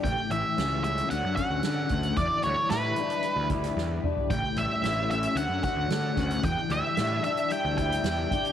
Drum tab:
HH |x-x-x-xxx-x-x-xx|x-x-x-xxx-xx----|x-x-x-xxx-x-x-xx|x-x-x-xxx-xxx-xx|
SD |----o-------o---|----o------oo---|----o-------o---|----o------oo---|
T2 |----------------|--------------o-|----------------|----------------|
FT |----------------|---------------o|----------------|----------------|
BD |o---------o---o-|o---------o-----|o---------o---o-|o---------o---o-|